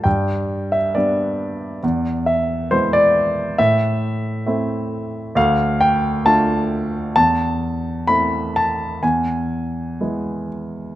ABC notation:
X:1
M:4/4
L:1/16
Q:1/4=67
K:Am
V:1 name="Grand piano"
g3 e d6 e2 c d3 | e8 f2 g2 a4 | a4 b2 a2 ^g6 z2 |]
V:2 name="Grand piano"
G,,4 [G,B,D]4 E,,4 [^G,B,E]4 | A,,4 [A,CE]4 D,,4 [A,DF]4 | E,,4 [A,CE]4 E,,4 [^G,B,E]4 |]